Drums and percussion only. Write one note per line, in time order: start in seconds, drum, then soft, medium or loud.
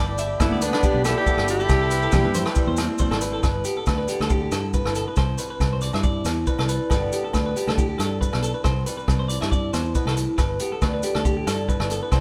0.18 closed hi-hat soft
0.18 muted conga soft
0.18 maracas medium
0.40 kick medium
0.40 cross-stick medium
0.40 high conga medium
0.40 low agogo medium
0.40 maracas medium
0.61 closed hi-hat soft
0.61 maracas medium
0.73 cross-stick medium
0.73 low agogo medium
0.83 kick medium
0.83 muted conga soft
0.83 maracas medium
1.04 cross-stick medium
1.04 closed hi-hat soft
1.04 high conga medium
1.04 low agogo medium
1.04 maracas medium
1.26 kick medium
1.26 high conga medium
1.26 maracas medium
1.38 cross-stick medium
1.38 low agogo medium
1.48 closed hi-hat soft
1.48 muted conga soft
1.48 maracas medium
1.60 maracas soft
1.69 kick medium
1.69 cross-stick medium
1.69 muted conga soft
1.69 low agogo medium
1.69 maracas medium
1.91 closed hi-hat soft
1.91 muted conga soft
1.91 maracas medium
2.02 maracas soft
2.12 kick medium
2.12 cross-stick medium
2.12 high conga medium
2.12 low conga medium
2.12 low agogo medium
2.12 maracas medium
2.34 closed hi-hat soft
2.34 low conga medium
2.34 maracas loud
2.45 cross-stick medium
2.45 low agogo medium
2.45 maracas soft
2.55 kick medium
2.55 muted conga soft
2.55 maracas medium
2.77 cross-stick medium
2.77 closed hi-hat medium
2.77 high conga medium
2.77 low agogo medium
2.77 maracas medium
2.98 kick medium
2.98 high conga medium
2.98 maracas medium
3.11 cross-stick medium
3.11 low agogo medium
3.21 closed hi-hat soft
3.21 maracas loud
3.43 kick medium
3.43 cross-stick medium
3.43 low agogo medium
3.43 maracas medium
3.64 closed hi-hat soft
3.64 maracas medium
3.86 kick medium
3.86 cross-stick medium
3.86 low agogo medium
3.86 maracas medium
4.08 closed hi-hat soft
4.08 maracas medium
4.19 cross-stick medium
4.19 low agogo medium
4.19 maracas soft
4.30 kick medium
4.30 maracas medium
4.51 cross-stick medium
4.51 closed hi-hat soft
4.51 low agogo medium
4.51 maracas medium
4.74 kick medium
4.74 maracas medium
4.86 cross-stick medium
4.86 low agogo medium
4.95 closed hi-hat soft
4.95 maracas medium
5.16 kick medium
5.16 cross-stick medium
5.16 low agogo medium
5.16 maracas medium
5.38 closed hi-hat soft
5.38 maracas medium
5.60 kick medium
5.60 cross-stick medium
5.60 low agogo medium
5.60 maracas medium
5.81 closed hi-hat soft
5.81 maracas medium
5.93 cross-stick medium
5.93 low agogo medium
5.93 maracas soft
6.03 kick medium
6.03 maracas medium
6.25 cross-stick medium
6.25 closed hi-hat soft
6.25 low agogo medium
6.25 maracas medium
6.47 kick medium
6.47 maracas medium
6.59 cross-stick medium
6.59 low agogo medium
6.69 closed hi-hat soft
6.69 maracas medium
6.90 kick medium
6.90 cross-stick medium
6.90 low agogo medium
6.90 maracas medium
7.12 closed hi-hat soft
7.12 maracas medium
7.33 kick medium
7.33 cross-stick medium
7.33 low agogo medium
7.33 maracas medium
7.56 closed hi-hat soft
7.56 maracas medium
7.68 cross-stick medium
7.68 low agogo medium
7.68 maracas soft
7.78 kick medium
7.78 maracas medium
7.99 cross-stick medium
7.99 closed hi-hat soft
7.99 low agogo medium
7.99 maracas medium
8.21 kick medium
8.21 maracas medium
8.33 cross-stick medium
8.33 low agogo medium
8.42 closed hi-hat soft
8.42 maracas medium
8.64 kick medium
8.64 cross-stick medium
8.64 low agogo medium
8.64 maracas medium
8.86 closed hi-hat soft
8.86 maracas medium
8.99 maracas soft
9.08 kick medium
9.08 cross-stick medium
9.08 low agogo medium
9.08 maracas medium
9.30 closed hi-hat soft
9.30 maracas medium
9.42 cross-stick medium
9.42 low agogo medium
9.42 maracas soft
9.52 kick medium
9.52 maracas medium
9.73 cross-stick medium
9.73 closed hi-hat soft
9.73 low agogo medium
9.73 maracas medium
9.85 maracas soft
9.95 kick medium
9.95 maracas medium
10.07 cross-stick medium
10.07 low agogo medium
10.17 closed hi-hat soft
10.17 maracas medium
10.38 kick medium
10.38 cross-stick medium
10.38 low agogo medium
10.38 maracas medium
10.59 closed hi-hat soft
10.59 maracas medium
10.82 kick medium
10.82 cross-stick medium
10.82 low agogo medium
10.82 maracas medium
11.03 closed hi-hat soft
11.03 maracas medium
11.15 cross-stick medium
11.15 low agogo medium
11.15 maracas soft
11.25 kick medium
11.25 maracas medium
11.47 cross-stick medium
11.47 closed hi-hat soft
11.47 low agogo medium
11.47 maracas medium
11.69 kick medium
11.69 maracas medium
11.80 cross-stick medium
11.80 low agogo medium
11.90 closed hi-hat soft
11.90 maracas medium
12.12 kick medium
12.12 cross-stick medium
12.12 low agogo medium
12.12 maracas medium